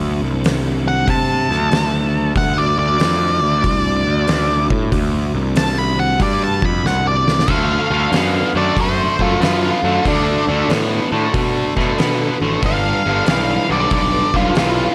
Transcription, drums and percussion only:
0, 0, Header, 1, 2, 480
1, 0, Start_track
1, 0, Key_signature, 2, "major"
1, 0, Tempo, 641711
1, 1763, Time_signature, 4, 2, 24, 8
1, 11182, End_track
2, 0, Start_track
2, 0, Title_t, "Drums"
2, 330, Note_on_c, 9, 46, 59
2, 343, Note_on_c, 9, 38, 115
2, 405, Note_off_c, 9, 46, 0
2, 418, Note_off_c, 9, 38, 0
2, 806, Note_on_c, 9, 36, 109
2, 807, Note_on_c, 9, 46, 62
2, 881, Note_off_c, 9, 36, 0
2, 881, Note_off_c, 9, 46, 0
2, 1133, Note_on_c, 9, 38, 33
2, 1208, Note_off_c, 9, 38, 0
2, 1282, Note_on_c, 9, 46, 54
2, 1295, Note_on_c, 9, 38, 105
2, 1357, Note_off_c, 9, 46, 0
2, 1370, Note_off_c, 9, 38, 0
2, 1762, Note_on_c, 9, 46, 50
2, 1763, Note_on_c, 9, 36, 91
2, 1837, Note_off_c, 9, 46, 0
2, 1838, Note_off_c, 9, 36, 0
2, 2241, Note_on_c, 9, 46, 64
2, 2253, Note_on_c, 9, 38, 102
2, 2315, Note_off_c, 9, 46, 0
2, 2328, Note_off_c, 9, 38, 0
2, 2722, Note_on_c, 9, 36, 103
2, 2723, Note_on_c, 9, 46, 58
2, 2797, Note_off_c, 9, 36, 0
2, 2798, Note_off_c, 9, 46, 0
2, 3197, Note_on_c, 9, 46, 55
2, 3210, Note_on_c, 9, 38, 106
2, 3272, Note_off_c, 9, 46, 0
2, 3285, Note_off_c, 9, 38, 0
2, 3519, Note_on_c, 9, 36, 104
2, 3593, Note_off_c, 9, 36, 0
2, 3681, Note_on_c, 9, 36, 96
2, 3682, Note_on_c, 9, 46, 59
2, 3756, Note_off_c, 9, 36, 0
2, 3756, Note_off_c, 9, 46, 0
2, 4156, Note_on_c, 9, 46, 63
2, 4168, Note_on_c, 9, 38, 119
2, 4230, Note_off_c, 9, 46, 0
2, 4243, Note_off_c, 9, 38, 0
2, 4636, Note_on_c, 9, 36, 107
2, 4638, Note_on_c, 9, 46, 61
2, 4711, Note_off_c, 9, 36, 0
2, 4713, Note_off_c, 9, 46, 0
2, 4954, Note_on_c, 9, 36, 102
2, 5029, Note_off_c, 9, 36, 0
2, 5130, Note_on_c, 9, 38, 61
2, 5205, Note_off_c, 9, 38, 0
2, 5445, Note_on_c, 9, 38, 88
2, 5520, Note_off_c, 9, 38, 0
2, 5530, Note_on_c, 9, 38, 89
2, 5594, Note_on_c, 9, 49, 91
2, 5596, Note_on_c, 9, 36, 99
2, 5605, Note_off_c, 9, 38, 0
2, 5668, Note_off_c, 9, 49, 0
2, 5671, Note_off_c, 9, 36, 0
2, 6077, Note_on_c, 9, 46, 51
2, 6090, Note_on_c, 9, 38, 105
2, 6152, Note_off_c, 9, 46, 0
2, 6164, Note_off_c, 9, 38, 0
2, 6557, Note_on_c, 9, 36, 107
2, 6560, Note_on_c, 9, 46, 56
2, 6632, Note_off_c, 9, 36, 0
2, 6635, Note_off_c, 9, 46, 0
2, 6876, Note_on_c, 9, 36, 68
2, 6950, Note_off_c, 9, 36, 0
2, 7043, Note_on_c, 9, 46, 51
2, 7055, Note_on_c, 9, 38, 100
2, 7118, Note_off_c, 9, 46, 0
2, 7130, Note_off_c, 9, 38, 0
2, 7521, Note_on_c, 9, 36, 92
2, 7521, Note_on_c, 9, 46, 50
2, 7596, Note_off_c, 9, 36, 0
2, 7596, Note_off_c, 9, 46, 0
2, 8001, Note_on_c, 9, 46, 51
2, 8014, Note_on_c, 9, 38, 109
2, 8076, Note_off_c, 9, 46, 0
2, 8089, Note_off_c, 9, 38, 0
2, 8483, Note_on_c, 9, 46, 50
2, 8484, Note_on_c, 9, 36, 105
2, 8558, Note_off_c, 9, 36, 0
2, 8558, Note_off_c, 9, 46, 0
2, 8803, Note_on_c, 9, 36, 77
2, 8819, Note_on_c, 9, 38, 27
2, 8877, Note_off_c, 9, 36, 0
2, 8894, Note_off_c, 9, 38, 0
2, 8963, Note_on_c, 9, 46, 51
2, 8976, Note_on_c, 9, 38, 103
2, 9038, Note_off_c, 9, 46, 0
2, 9051, Note_off_c, 9, 38, 0
2, 9443, Note_on_c, 9, 46, 52
2, 9445, Note_on_c, 9, 36, 97
2, 9518, Note_off_c, 9, 46, 0
2, 9520, Note_off_c, 9, 36, 0
2, 9920, Note_on_c, 9, 46, 53
2, 9933, Note_on_c, 9, 38, 110
2, 9995, Note_off_c, 9, 46, 0
2, 10007, Note_off_c, 9, 38, 0
2, 10401, Note_on_c, 9, 46, 55
2, 10406, Note_on_c, 9, 36, 113
2, 10476, Note_off_c, 9, 46, 0
2, 10481, Note_off_c, 9, 36, 0
2, 10726, Note_on_c, 9, 36, 76
2, 10734, Note_on_c, 9, 38, 30
2, 10800, Note_off_c, 9, 36, 0
2, 10809, Note_off_c, 9, 38, 0
2, 10884, Note_on_c, 9, 46, 55
2, 10897, Note_on_c, 9, 38, 100
2, 10959, Note_off_c, 9, 46, 0
2, 10972, Note_off_c, 9, 38, 0
2, 11182, End_track
0, 0, End_of_file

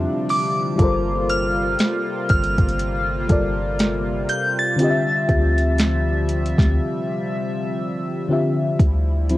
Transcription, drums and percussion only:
0, 0, Header, 1, 2, 480
1, 0, Start_track
1, 0, Key_signature, -2, "minor"
1, 0, Tempo, 1000000
1, 381, Time_signature, 4, 2, 24, 8
1, 4501, End_track
2, 0, Start_track
2, 0, Title_t, "Drums"
2, 141, Note_on_c, 9, 46, 75
2, 189, Note_off_c, 9, 46, 0
2, 380, Note_on_c, 9, 36, 123
2, 381, Note_on_c, 9, 42, 70
2, 428, Note_off_c, 9, 36, 0
2, 429, Note_off_c, 9, 42, 0
2, 621, Note_on_c, 9, 42, 68
2, 669, Note_off_c, 9, 42, 0
2, 859, Note_on_c, 9, 42, 67
2, 865, Note_on_c, 9, 38, 120
2, 907, Note_off_c, 9, 42, 0
2, 913, Note_off_c, 9, 38, 0
2, 1100, Note_on_c, 9, 42, 54
2, 1103, Note_on_c, 9, 36, 83
2, 1148, Note_off_c, 9, 42, 0
2, 1151, Note_off_c, 9, 36, 0
2, 1170, Note_on_c, 9, 42, 56
2, 1218, Note_off_c, 9, 42, 0
2, 1239, Note_on_c, 9, 42, 50
2, 1240, Note_on_c, 9, 36, 83
2, 1287, Note_off_c, 9, 42, 0
2, 1288, Note_off_c, 9, 36, 0
2, 1289, Note_on_c, 9, 42, 51
2, 1337, Note_off_c, 9, 42, 0
2, 1341, Note_on_c, 9, 42, 71
2, 1389, Note_off_c, 9, 42, 0
2, 1580, Note_on_c, 9, 42, 68
2, 1582, Note_on_c, 9, 36, 94
2, 1628, Note_off_c, 9, 42, 0
2, 1630, Note_off_c, 9, 36, 0
2, 1820, Note_on_c, 9, 42, 77
2, 1824, Note_on_c, 9, 38, 122
2, 1868, Note_off_c, 9, 42, 0
2, 1872, Note_off_c, 9, 38, 0
2, 2059, Note_on_c, 9, 42, 78
2, 2107, Note_off_c, 9, 42, 0
2, 2299, Note_on_c, 9, 42, 74
2, 2347, Note_off_c, 9, 42, 0
2, 2539, Note_on_c, 9, 36, 103
2, 2539, Note_on_c, 9, 42, 67
2, 2587, Note_off_c, 9, 36, 0
2, 2587, Note_off_c, 9, 42, 0
2, 2679, Note_on_c, 9, 42, 39
2, 2727, Note_off_c, 9, 42, 0
2, 2777, Note_on_c, 9, 42, 65
2, 2783, Note_on_c, 9, 38, 114
2, 2825, Note_off_c, 9, 42, 0
2, 2831, Note_off_c, 9, 38, 0
2, 3019, Note_on_c, 9, 42, 67
2, 3067, Note_off_c, 9, 42, 0
2, 3100, Note_on_c, 9, 42, 49
2, 3148, Note_off_c, 9, 42, 0
2, 3160, Note_on_c, 9, 36, 80
2, 3164, Note_on_c, 9, 38, 63
2, 3179, Note_on_c, 9, 42, 37
2, 3208, Note_off_c, 9, 36, 0
2, 3212, Note_off_c, 9, 38, 0
2, 3227, Note_off_c, 9, 42, 0
2, 4221, Note_on_c, 9, 36, 123
2, 4222, Note_on_c, 9, 42, 71
2, 4269, Note_off_c, 9, 36, 0
2, 4270, Note_off_c, 9, 42, 0
2, 4462, Note_on_c, 9, 42, 64
2, 4501, Note_off_c, 9, 42, 0
2, 4501, End_track
0, 0, End_of_file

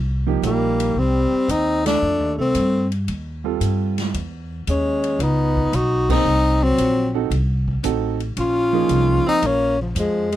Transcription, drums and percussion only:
0, 0, Header, 1, 2, 480
1, 0, Start_track
1, 0, Tempo, 529101
1, 1827, Time_signature, 4, 2, 24, 8
1, 9401, End_track
2, 0, Start_track
2, 0, Title_t, "Drums"
2, 393, Note_on_c, 9, 44, 42
2, 393, Note_on_c, 9, 51, 62
2, 484, Note_off_c, 9, 44, 0
2, 484, Note_off_c, 9, 51, 0
2, 724, Note_on_c, 9, 51, 66
2, 815, Note_off_c, 9, 51, 0
2, 1354, Note_on_c, 9, 44, 58
2, 1354, Note_on_c, 9, 51, 59
2, 1445, Note_off_c, 9, 44, 0
2, 1445, Note_off_c, 9, 51, 0
2, 1686, Note_on_c, 9, 51, 66
2, 1689, Note_on_c, 9, 38, 81
2, 1777, Note_off_c, 9, 51, 0
2, 1779, Note_off_c, 9, 38, 0
2, 2310, Note_on_c, 9, 44, 56
2, 2310, Note_on_c, 9, 51, 63
2, 2401, Note_off_c, 9, 44, 0
2, 2401, Note_off_c, 9, 51, 0
2, 2646, Note_on_c, 9, 51, 43
2, 2737, Note_off_c, 9, 51, 0
2, 2794, Note_on_c, 9, 51, 53
2, 2884, Note_off_c, 9, 51, 0
2, 3275, Note_on_c, 9, 44, 51
2, 3275, Note_on_c, 9, 51, 62
2, 3366, Note_off_c, 9, 44, 0
2, 3366, Note_off_c, 9, 51, 0
2, 3609, Note_on_c, 9, 51, 46
2, 3612, Note_on_c, 9, 38, 48
2, 3700, Note_off_c, 9, 51, 0
2, 3702, Note_off_c, 9, 38, 0
2, 3759, Note_on_c, 9, 51, 59
2, 3850, Note_off_c, 9, 51, 0
2, 4238, Note_on_c, 9, 44, 45
2, 4238, Note_on_c, 9, 51, 61
2, 4329, Note_off_c, 9, 44, 0
2, 4329, Note_off_c, 9, 51, 0
2, 4569, Note_on_c, 9, 51, 47
2, 4659, Note_off_c, 9, 51, 0
2, 4717, Note_on_c, 9, 51, 57
2, 4808, Note_off_c, 9, 51, 0
2, 5050, Note_on_c, 9, 36, 53
2, 5141, Note_off_c, 9, 36, 0
2, 5199, Note_on_c, 9, 44, 49
2, 5199, Note_on_c, 9, 51, 60
2, 5289, Note_off_c, 9, 44, 0
2, 5289, Note_off_c, 9, 51, 0
2, 5529, Note_on_c, 9, 36, 88
2, 5532, Note_on_c, 9, 49, 78
2, 5620, Note_off_c, 9, 36, 0
2, 5623, Note_off_c, 9, 49, 0
2, 6154, Note_on_c, 9, 44, 50
2, 6154, Note_on_c, 9, 51, 66
2, 6244, Note_off_c, 9, 44, 0
2, 6244, Note_off_c, 9, 51, 0
2, 6635, Note_on_c, 9, 51, 58
2, 6726, Note_off_c, 9, 51, 0
2, 6964, Note_on_c, 9, 36, 58
2, 7055, Note_off_c, 9, 36, 0
2, 7109, Note_on_c, 9, 44, 63
2, 7109, Note_on_c, 9, 51, 63
2, 7200, Note_off_c, 9, 44, 0
2, 7200, Note_off_c, 9, 51, 0
2, 7441, Note_on_c, 9, 51, 42
2, 7532, Note_off_c, 9, 51, 0
2, 7590, Note_on_c, 9, 51, 61
2, 7681, Note_off_c, 9, 51, 0
2, 8066, Note_on_c, 9, 44, 51
2, 8066, Note_on_c, 9, 51, 60
2, 8157, Note_off_c, 9, 44, 0
2, 8157, Note_off_c, 9, 51, 0
2, 8550, Note_on_c, 9, 51, 57
2, 8641, Note_off_c, 9, 51, 0
2, 9033, Note_on_c, 9, 44, 56
2, 9033, Note_on_c, 9, 51, 61
2, 9124, Note_off_c, 9, 44, 0
2, 9124, Note_off_c, 9, 51, 0
2, 9366, Note_on_c, 9, 51, 45
2, 9401, Note_off_c, 9, 51, 0
2, 9401, End_track
0, 0, End_of_file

